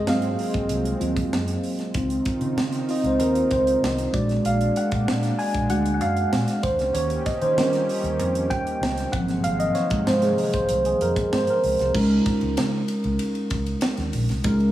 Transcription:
Already playing: analog synth pad F#3 G#3 C4, tine electric piano G#4 D#5
0.07 fingered electric bass G#2, tine electric piano F#3 A#3 C4 F4 F5, snare
0.22 closed hi-hat
0.39 open hi-hat
0.54 fingered electric bass G#1, kick, closed hi-hat
0.69 fingered electric bass C2, closed hi-hat
0.85 closed hi-hat
1.00 fingered electric bass D#2, tine electric piano F#3 A#3 C4 F4, closed hi-hat
1.17 kick, closed hi-hat
1.32 fingered electric bass F#2, snare
1.48 closed hi-hat
1.64 open hi-hat
1.79 snare, closed hi-hat
1.94 fingered electric bass C#2, analog synth pad D#3 C4 D#4 F4, tine electric piano C4 D#4 F4, kick, closed hi-hat
2.10 closed hi-hat
2.25 kick, closed hi-hat
2.41 fingered electric bass C#3, closed hi-hat
2.57 fingered electric bass C#3, snare
2.72 snare, closed hi-hat
2.88 tine electric piano C4 D#4 F4 D#5, open hi-hat
3.03 fingered electric bass C#2, tine electric piano C5, closed hi-hat
3.19 fingered electric bass D#2, tine electric piano A#4, closed hi-hat
3.35 closed hi-hat
3.51 fingered electric bass C#2, tine electric piano C5, kick, closed hi-hat
3.67 closed hi-hat
3.82 fingered electric bass C2, snare
3.98 closed hi-hat
4.12 fingered electric bass A#1, tine electric piano G#3 D4 F#4 D5, analog synth pad G#3 A#3 D4, kick, closed hi-hat
4.29 snare, closed hi-hat
4.45 fingered electric bass A#1, tine electric piano F5, closed hi-hat
4.61 closed hi-hat
4.76 tine electric piano F#5, closed hi-hat
4.91 fingered electric bass A#2, kick, closed hi-hat
5.07 fingered electric bass A#2, snare
5.23 snare, closed hi-hat
5.39 tine electric piano G#5, open hi-hat
5.54 fingered electric bass A#1, kick, closed hi-hat
5.69 fingered electric bass D2, tine electric piano G#3 D4 F#4 F#5, closed hi-hat
5.86 closed hi-hat
5.94 tine electric piano F#5
6.00 fingered electric bass F#2, tine electric piano F5, closed hi-hat
6.17 closed hi-hat
6.32 fingered electric bass A#2, snare
6.48 snare, closed hi-hat
6.63 fingered electric bass D#2, analog synth pad D#3 A#3 C#4 G4, tine electric piano C5, kick, closed hi-hat
6.78 fingered electric bass C#2, snare, closed hi-hat
6.94 fingered electric bass D#2, tine electric piano C#5, closed hi-hat
7.10 closed hi-hat
7.26 tine electric piano D#5, kick, snare, closed hi-hat
7.42 fingered electric bass D#3, tine electric piano C5, closed hi-hat
7.57 fingered electric bass D#3, tine electric piano G3 C#4 F4 A#4, snare
7.73 snare, closed hi-hat
7.89 open hi-hat
8.03 fingered electric bass D#2, closed hi-hat
8.19 fingered electric bass F2, closed hi-hat
8.35 closed hi-hat
8.50 fingered electric bass D#2, tine electric piano G5, kick, closed hi-hat
8.67 closed hi-hat
8.81 fingered electric bass C#2, snare
8.98 snare, closed hi-hat
9.12 fingered electric bass G#1, analog synth pad C3 D#3 G#3, tine electric piano F3 F#3 A#3 C4 F#5, kick, closed hi-hat
9.28 snare, closed hi-hat
9.44 fingered electric bass G#1, tine electric piano F5, closed hi-hat
9.60 tine electric piano D#5, closed hi-hat
9.75 tine electric piano C#5, snare, closed hi-hat
9.90 fingered electric bass G#2, kick, closed hi-hat
10.07 fingered electric bass G#2, tine electric piano C5, snare
10.22 tine electric piano G#4, snare, closed hi-hat
10.38 open hi-hat
10.53 fingered electric bass G#1, tine electric piano C5, kick, closed hi-hat
10.69 fingered electric bass C2, closed hi-hat
10.85 tine electric piano G#4, closed hi-hat
11.01 fingered electric bass F2, tine electric piano A#4, closed hi-hat
11.16 kick, closed hi-hat
11.32 fingered electric bass G#2, tine electric piano C5, snare
11.47 tine electric piano A#4, closed hi-hat
11.64 fingered electric bass C#2, open hi-hat
11.79 fingered electric bass C2, snare, closed hi-hat
11.93 fingered electric bass C#2, tine electric piano G#3 C#4 D#4 F4 A#4, kick, crash
12.26 kick, snare, ride
12.41 fingered electric bass C#2, ride
12.57 fingered electric bass C#3, snare, ride
12.88 ride
13.04 fingered electric bass C#2, ride
13.19 ride
13.35 ride
13.50 fingered electric bass C#2, kick, ride
13.66 ride
13.81 snare, ride
13.97 fingered electric bass D#2, snare, ride
14.13 fingered electric bass A#1, open hi-hat, ride
14.29 fingered electric bass C2, snare, ride
14.44 fingered electric bass C#2, tine electric piano G#3 C#4 D#4 F4 A#4, kick, hi-hat pedal, ride
14.60 ride

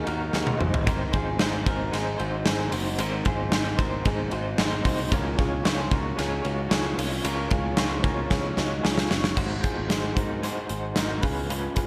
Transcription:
0.07 picked electric bass D#2, clean electric guitar D#4 F#4 A#4, ride
0.33 picked electric bass D#2, clean electric guitar D#3 D#4 F#4 G#4 A#4, snare
0.47 high tom
0.59 picked electric bass G#1, clean electric guitar C4 D#4 F#4 C5, mid tom
0.74 floor tom
0.86 clean electric guitar G#3 C4 D#4 A#4 C5, kick, hi-hat pedal, ride
1.12 picked electric bass G#1, clean electric guitar C4 D#4 F4 G#4 C5, kick, ride
1.38 picked electric bass G#1, clean electric guitar G#3 C4 D#4 G#4 C5, snare, ride
1.65 picked electric bass G#1, clean electric guitar C4 D#4 F#4 A#4 C5, kick, ride
1.92 picked electric bass G#1, clean electric guitar G#3 C4 D#4 G#4 C5, snare, ride
2.17 picked electric bass G#1, clean electric guitar C4 D#4 F#4 C5, ride
2.44 picked electric bass G#1, clean electric guitar G#3 C4 D#4 G#4 C5, snare, ride
2.71 picked electric bass F#1, clean electric guitar C4 D#4 F#4 C5, open hi-hat, ride
2.98 picked electric bass G#1, clean electric guitar G#3 C4 D#4 A#4 C5, hi-hat pedal, ride
3.25 picked electric bass G#1, clean electric guitar C4 D#4 F4 G#4 C5, kick, ride
3.52 picked electric bass G#1, clean electric guitar G#3 C4 D#4 G#4 C5, snare, ride
3.78 picked electric bass G#1, clean electric guitar C4 F#4 A#4 C5, kick, ride
3.82 clean electric guitar D#4
4.05 picked electric bass G#1, clean electric guitar G#3 C4 D#4 G#4 C5, kick, ride
4.31 picked electric bass G#1, clean electric guitar C4 D#4 F#4 C5, ride
4.35 clean electric guitar D#4
4.58 picked electric bass G#1, clean electric guitar G#3 C4 D#4 G#4 C5, snare, ride
4.84 picked electric bass C2, clean electric guitar C4 D#4 F#4 C5, kick, open hi-hat, ride
4.89 clean electric guitar D#4
5.11 picked electric bass C#2, clean electric guitar C#3 F3 G#3 C#4 F4 A#4 C#5, kick, hi-hat pedal, ride
5.39 picked electric bass C#2, clean electric guitar G#3 C#4 F4 G#4 C#5, kick, ride
5.64 picked electric bass C#2, clean electric guitar C#3 F3 G#3 C#4 F4 G#4 C5 C#5, snare, ride
5.90 picked electric bass C#2, clean electric guitar G#3 C#4 F4 F#4 A#4 C#5, kick, ride
6.17 picked electric bass C#2, clean electric guitar G#3 C#4 F4 G#4 C#5, snare, ride
6.42 picked electric bass C#2, clean electric guitar C#4 F4 F#4 C#5, ride
6.46 clean electric guitar G#3 D#4
6.69 picked electric bass C#2, clean electric guitar C#3 F3 G#3 C#4 F4 G#4 C#5, snare, ride
6.97 picked electric bass C2, clean electric guitar G#3 C#4 F4 C#5, open hi-hat, ride
7.23 picked electric bass C#2, clean electric guitar C#3 F3 G#3 C#4 F4 A#4 C#5, hi-hat pedal, ride
7.50 picked electric bass C#2, clean electric guitar G#3 C#4 F4 G#4 C#5, kick, ride
7.77 picked electric bass C#2, clean electric guitar C#3 F3 G#3 C#4 F4 G#4 C5 C#5, snare, ride
8.03 picked electric bass C#2, clean electric guitar G#3 C#4 F4 F#4 A#4 C#5, kick, ride
8.30 picked electric bass C#2, clean electric guitar G#3 C#4 F4 G#4 C#5, kick, snare
8.57 picked electric bass C#2, clean electric guitar G#3 C#4 D#4 F4 F#4 C#5, snare
8.83 picked electric bass C#2, clean electric guitar C#3 F3 G#3 C#4 F4 G#4 C#5, snare
8.98 snare
9.09 picked electric bass F#1, clean electric guitar G#3 C#4 F4 C#5, snare
9.24 snare
9.36 picked electric bass G#1, clean electric guitar G#3 D#4 F#4 C5, kick, crash
9.61 clean electric guitar D#4 F#4 G#4 C5, kick, closed hi-hat
9.65 clean electric guitar F4
9.78 picked electric bass G#1
9.88 picked electric bass G#1, clean electric guitar G#3 D#4 F#4 G#4 C5, snare, closed hi-hat
10.15 picked electric bass G#2, clean electric guitar D#4 F#4 A#4 C5, kick, closed hi-hat
10.42 clean electric guitar G#3 D#4 F#4 G#4 C5, snare, closed hi-hat
10.69 picked electric bass G#1, clean electric guitar D#4 F#4 C5, closed hi-hat
10.95 picked electric bass G#1, clean electric guitar G#3 D#4 F#4 A#4 C5, snare, closed hi-hat
11.21 picked electric bass C#2, clean electric guitar G#3 C#4 F4 G#4 B4, kick, open hi-hat
11.48 clean electric guitar C#3 F3 G#3 C#4 F4 B4, closed hi-hat
11.76 clean electric guitar G#3 C#4 F4 G#4 B4, kick, closed hi-hat

